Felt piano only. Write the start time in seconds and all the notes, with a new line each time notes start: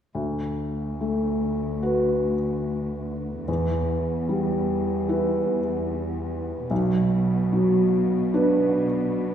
0.15 D2
1.01 A3
1.82 F#4 B4
3.48 E2
4.29 G3
5.09 E4 B4
6.71 B1
7.53 F#3
8.34 D4 B4